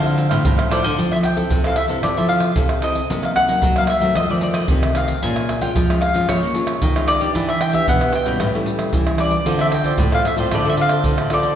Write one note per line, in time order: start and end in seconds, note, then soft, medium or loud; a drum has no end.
0.00 0.26 D3 medium
0.00 0.42 D3 medium
0.00 0.28 F3 medium
0.00 0.28 C4 medium
0.00 0.68 F5 medium
0.05 0.16 A4 soft
0.05 0.17 C5 soft
0.05 0.18 F5 medium
0.05 pandeiro soft
0.05 shaker soft
0.17 0.30 D4 soft
0.17 0.30 A4 soft
0.17 0.29 C5 soft
0.17 0.28 F5 soft
0.17 pandeiro medium
0.17 shaker medium
0.29 0.43 A2 medium
0.29 0.67 F3 medium
0.29 0.67 C4 medium
0.29 0.57 A4 medium
0.29 0.57 C5 medium
0.29 0.56 F5 medium
0.29 pandeiro medium
0.29 tamborim medium
0.29 shaker medium
0.45 0.95 A2 soft
0.45 0.84 A2 medium
0.45 pandeiro medium
0.45 shaker medium
0.45 surdo loud
0.57 0.69 A4 soft
0.57 0.70 C5 soft
0.57 0.70 F5 soft
0.57 pandeiro soft
0.57 tamborim medium
0.57 shaker soft
0.69 0.89 F3 medium
0.69 0.89 C4 medium
0.69 0.83 D4 medium
0.69 0.89 E4 medium
0.69 0.83 A4 medium
0.69 0.83 C5 medium
0.69 1.09 D5 medium
0.69 0.82 F5 medium
0.69 pandeiro medium
0.69 tamborim medium
0.69 shaker medium
0.83 0.96 D3 medium
0.83 0.97 A4 soft
0.83 0.97 C5 soft
0.83 0.96 F5 soft
0.83 pandeiro medium
0.83 shaker medium
0.83 surdo soft
0.98 1.49 F3 medium
0.98 1.43 F3 medium
0.98 1.23 C4 medium
0.98 1.23 E4 soft
0.98 1.24 A4 medium
0.98 pandeiro medium
0.98 shaker medium
0.98 surdo medium
1.12 1.17 E5 medium
1.12 pandeiro soft
1.12 tamborim medium
1.12 shaker soft
1.23 1.62 G5 medium
1.23 pandeiro medium
1.23 tamborim medium
1.23 shaker medium
1.23 surdo soft
1.36 1.59 C4 medium
1.36 1.60 E4 medium
1.36 1.60 A4 medium
1.36 pandeiro medium
1.36 shaker medium
1.36 surdo soft
1.50 1.74 C3 medium
1.50 2.02 C3 soft
1.50 pandeiro medium
1.50 shaker medium
1.50 surdo loud
1.64 1.87 C4 medium
1.64 1.87 E4 medium
1.64 1.87 A4 medium
1.64 1.77 F5 medium
1.64 pandeiro soft
1.64 tamborim medium
1.64 shaker soft
1.64 surdo soft
1.76 1.85 E5 medium
1.76 pandeiro medium
1.76 tamborim medium
1.76 shaker medium
1.88 2.01 C3 medium
1.88 2.12 C4 medium
1.88 2.12 E4 medium
1.88 2.13 A4 medium
1.88 pandeiro medium
1.88 shaker medium
1.88 surdo soft
2.03 2.15 C3 medium
2.03 2.54 F3 medium
2.03 2.16 D5 medium
2.03 pandeiro medium
2.03 tamborim medium
2.03 shaker medium
2.03 surdo medium
2.16 2.52 F3 medium
2.16 2.53 C4 medium
2.16 2.53 E4 medium
2.16 2.53 A4 medium
2.16 2.29 E5 medium
2.16 pandeiro soft
2.16 shaker soft
2.29 2.84 F5 medium
2.29 pandeiro medium
2.40 pandeiro medium
2.40 tamborim medium
2.40 shaker medium
2.56 3.07 C3 soft
2.56 3.02 C3 medium
2.56 2.72 C4 soft
2.56 2.73 E4 soft
2.56 2.73 A4 medium
2.56 pandeiro medium
2.56 shaker medium
2.56 surdo loud
2.69 pandeiro soft
2.69 tamborim medium
2.69 shaker soft
2.82 2.99 C4 medium
2.82 2.99 E4 medium
2.82 2.99 A4 medium
2.82 3.21 D#5 medium
2.82 pandeiro medium
2.82 tamborim medium
2.95 pandeiro medium
2.95 shaker medium
2.95 surdo soft
3.10 3.55 C3 medium
3.10 3.60 C3 medium
3.10 3.46 F#3 medium
3.10 3.46 A#3 soft
3.10 3.46 D#4 medium
3.10 pandeiro medium
3.10 shaker medium
3.10 surdo medium
3.23 3.30 F5 medium
3.23 pandeiro soft
3.23 tamborim medium
3.23 shaker soft
3.36 3.77 F#5 medium
3.36 pandeiro medium
3.36 tamborim medium
3.36 surdo soft
3.48 3.71 F#3 medium
3.48 3.72 A#3 medium
3.48 3.72 D#4 medium
3.48 pandeiro medium
3.48 shaker medium
3.48 surdo soft
3.62 4.14 C3 soft
3.62 3.86 F#3 medium
3.62 pandeiro medium
3.62 shaker medium
3.62 surdo loud
3.76 3.99 F#3 medium
3.76 4.00 A#3 medium
3.76 4.00 D#4 medium
3.76 3.83 F5 medium
3.76 pandeiro soft
3.76 tamborim medium
3.76 shaker soft
3.76 surdo soft
3.87 4.14 E5 medium
3.87 pandeiro medium
3.87 tamborim medium
3.87 shaker medium
4.01 4.25 D#3 medium
4.01 4.13 F#3 medium
4.01 4.25 A3 medium
4.01 4.26 C4 medium
4.01 pandeiro medium
4.01 shaker medium
4.01 surdo soft
4.15 4.67 F2 medium
4.15 4.28 F3 medium
4.15 4.29 D#5 medium
4.15 pandeiro medium
4.15 tamborim medium
4.15 shaker medium
4.15 surdo medium
4.29 4.66 D#3 medium
4.29 4.64 F3 medium
4.29 4.67 A3 medium
4.29 4.67 C4 medium
4.29 4.36 D5 medium
4.29 pandeiro soft
4.29 shaker soft
4.41 4.54 D5 medium
4.41 pandeiro medium
4.41 shaker medium
4.54 4.92 D#5 medium
4.54 pandeiro medium
4.54 tamborim medium
4.54 shaker medium
4.68 5.15 C3 medium
4.68 5.20 C3 soft
4.68 4.92 D#3 medium
4.68 4.92 A3 soft
4.68 4.93 C4 medium
4.68 pandeiro medium
4.68 shaker medium
4.68 surdo loud
4.83 pandeiro soft
4.83 tamborim medium
4.83 shaker soft
4.95 5.18 D#3 medium
4.95 5.18 A3 medium
4.95 5.19 C4 medium
4.95 5.21 F5 medium
4.95 pandeiro medium
4.95 tamborim medium
5.08 pandeiro medium
5.08 shaker medium
5.08 surdo soft
5.23 5.73 A#2 medium
5.23 5.68 A#2 loud
5.23 5.48 G#3 medium
5.23 5.48 C#4 medium
5.23 5.48 F4 medium
5.23 5.61 G#5 medium
5.23 pandeiro medium
5.23 shaker medium
5.23 surdo medium
5.36 pandeiro soft
5.36 tamborim medium
5.36 shaker soft
5.49 pandeiro medium
5.49 tamborim medium
5.49 surdo soft
5.61 5.84 G#3 medium
5.61 5.84 C#4 medium
5.61 5.84 F4 medium
5.61 6.01 G5 medium
5.61 pandeiro medium
5.61 shaker medium
5.61 surdo soft
5.76 6.26 F2 medium
5.76 5.98 F3 loud
5.76 pandeiro medium
5.76 shaker medium
5.76 surdo loud
5.90 6.12 G#3 medium
5.90 6.12 C#4 medium
5.90 6.12 F4 medium
5.90 pandeiro soft
5.90 tamborim medium
5.90 shaker soft
5.90 surdo soft
6.01 6.29 F5 medium
6.01 pandeiro medium
6.01 tamborim medium
6.14 6.27 F3 medium
6.14 6.51 G#3 medium
6.14 6.51 C#4 medium
6.14 6.51 F4 medium
6.14 pandeiro medium
6.14 shaker medium
6.14 surdo soft
6.29 6.79 A#2 medium
6.29 6.40 F3 medium
6.29 7.08 C#5 medium
6.29 pandeiro medium
6.29 tamborim medium
6.29 shaker medium
6.29 surdo medium
6.43 6.76 A#3 medium
6.43 pandeiro soft
6.43 shaker soft
6.55 6.80 G#3 medium
6.55 6.80 C#4 medium
6.55 6.80 F4 medium
6.55 pandeiro medium
6.67 pandeiro medium
6.67 tamborim medium
6.67 shaker medium
6.82 7.32 F2 soft
6.82 7.27 D#3 medium
6.82 pandeiro medium
6.82 shaker medium
6.82 surdo loud
6.96 7.18 G#3 medium
6.96 7.18 C#4 medium
6.96 7.18 F4 medium
6.96 pandeiro soft
6.96 tamborim medium
6.96 shaker soft
7.08 7.45 D5 medium
7.08 pandeiro medium
7.08 tamborim medium
7.21 7.70 B3 medium
7.21 7.70 D4 medium
7.21 7.70 G4 medium
7.21 pandeiro medium
7.21 shaker medium
7.21 surdo soft
7.35 7.80 E3 loud
7.35 7.86 E3 medium
7.35 pandeiro medium
7.35 shaker medium
7.35 surdo medium
7.49 7.61 E5 medium
7.49 pandeiro soft
7.49 tamborim medium
7.49 shaker soft
7.61 7.74 G5 medium
7.61 pandeiro medium
7.61 tamborim medium
7.61 shaker medium
7.73 7.96 B3 medium
7.73 7.97 D4 medium
7.73 7.97 G4 medium
7.73 7.87 E5 medium
7.73 pandeiro medium
7.73 shaker medium
7.73 surdo soft
7.87 8.10 B2 loud
7.87 8.38 B2 soft
7.87 8.13 F#5 medium
7.87 pandeiro medium
7.87 shaker medium
7.87 surdo loud
8.01 8.24 B3 medium
8.01 8.24 D4 medium
8.01 8.24 G4 medium
8.01 pandeiro soft
8.01 tamborim medium
8.01 shaker soft
8.01 surdo soft
8.13 9.24 G5 medium
8.13 pandeiro medium
8.13 tamborim medium
8.26 8.38 B2 medium
8.26 8.49 G3 medium
8.26 8.49 C#4 medium
8.26 8.49 E4 medium
8.26 pandeiro medium
8.26 shaker medium
8.26 surdo soft
8.40 8.91 A2 medium
8.40 8.53 A2 medium
8.40 pandeiro medium
8.40 tamborim medium
8.40 shaker medium
8.40 surdo medium
8.54 8.90 G3 medium
8.54 8.88 A3 medium
8.54 8.90 C#4 medium
8.54 8.90 E4 medium
8.54 pandeiro soft
8.54 shaker soft
8.66 pandeiro medium
8.66 shaker medium
8.79 pandeiro medium
8.79 tamborim medium
8.79 shaker medium
8.93 9.39 E3 medium
8.93 9.44 E3 soft
8.93 9.16 G3 soft
8.93 9.16 C#4 soft
8.93 9.16 E4 medium
8.93 pandeiro medium
8.93 shaker medium
8.93 surdo loud
9.07 pandeiro soft
9.07 tamborim medium
9.07 shaker soft
9.18 9.35 G3 soft
9.18 9.35 C#4 medium
9.18 9.36 E4 medium
9.18 9.61 D5 medium
9.18 pandeiro medium
9.18 tamborim medium
9.18 shaker medium
9.31 pandeiro medium
9.31 shaker medium
9.31 surdo soft
9.45 9.96 D3 medium
9.45 9.92 D3 medium
9.45 9.71 C4 medium
9.45 9.58 F4 medium
9.45 9.71 F4 soft
9.45 9.71 A4 medium
9.45 9.59 A4 medium
9.45 9.59 C5 medium
9.45 9.58 D5 medium
9.45 pandeiro medium
9.45 shaker medium
9.45 surdo medium
9.59 9.72 A4 soft
9.59 9.71 C5 soft
9.59 9.72 D5 soft
9.59 9.66 E5 medium
9.59 pandeiro soft
9.59 tamborim medium
9.59 shaker soft
9.72 10.11 G5 medium
9.72 muted cavaquinho stroke soft
9.72 pandeiro medium
9.72 tamborim medium
9.72 surdo soft
9.84 10.07 C4 medium
9.84 10.08 F4 medium
9.84 10.08 A4 medium
9.84 10.12 A4 soft
9.84 10.12 C5 medium
9.84 10.11 D5 medium
9.84 pandeiro medium
9.84 shaker medium
9.84 surdo soft
9.98 10.49 A2 medium
9.98 10.22 A2 loud
9.98 pandeiro medium
9.98 shaker medium
9.98 surdo loud
10.11 10.34 C4 medium
10.11 10.35 F4 medium
10.11 10.35 A4 medium
10.11 10.25 A4 soft
10.11 10.25 C5 soft
10.11 10.25 D5 soft
10.11 10.27 F5 medium
10.11 pandeiro soft
10.11 tamborim medium
10.11 shaker soft
10.11 surdo soft
10.25 10.34 E5 medium
10.25 muted cavaquinho stroke soft
10.25 pandeiro medium
10.25 tamborim medium
10.25 shaker medium
10.36 10.50 A2 medium
10.36 10.60 C4 medium
10.36 10.60 F4 medium
10.36 10.60 A4 medium
10.36 10.52 C5 medium
10.36 10.51 D5 medium
10.36 pandeiro medium
10.36 shaker medium
10.36 surdo soft
10.40 10.52 A4 medium
10.51 10.63 A2 medium
10.51 11.02 D3 medium
10.51 10.65 F4 medium
10.51 10.65 A4 medium
10.51 10.66 C5 medium
10.51 10.66 D5 medium
10.51 10.67 D5 medium
10.51 pandeiro medium
10.51 tamborim medium
10.51 shaker medium
10.51 surdo medium
10.65 11.00 D3 medium
10.65 11.01 C4 medium
10.65 11.01 F4 medium
10.65 11.01 A4 medium
10.65 10.78 A4 soft
10.65 10.79 C5 soft
10.65 10.79 D5 soft
10.65 pandeiro soft
10.65 shaker soft
10.69 10.74 E5 medium
10.77 10.91 F4 soft
10.77 10.91 A4 soft
10.77 10.90 C5 soft
10.77 10.89 D5 soft
10.77 pandeiro medium
10.77 shaker medium
10.81 11.35 F5 medium
10.89 11.18 A4 medium
10.89 11.18 C5 medium
10.89 11.17 D5 medium
10.89 pandeiro medium
10.89 tamborim medium
10.89 shaker medium
11.04 11.55 A2 soft
11.04 11.50 D3 medium
11.04 11.28 C4 medium
11.04 11.28 F4 soft
11.04 11.28 A4 soft
11.04 pandeiro medium
11.04 shaker medium
11.04 surdo loud
11.18 11.31 A4 soft
11.18 11.32 C5 soft
11.18 11.31 D5 soft
11.18 pandeiro soft
11.18 tamborim medium
11.18 shaker soft
11.30 11.54 C4 medium
11.30 11.54 F4 medium
11.30 11.44 F4 medium
11.30 11.54 A4 medium
11.30 11.45 A4 medium
11.30 11.43 C5 medium
11.30 11.43 D5 medium
11.30 11.55 D5 medium
11.30 pandeiro medium
11.30 tamborim medium
11.30 shaker medium
11.43 11.55 A4 soft
11.43 11.55 C5 soft
11.43 11.55 D5 soft
11.43 pandeiro medium
11.43 shaker medium
11.43 surdo soft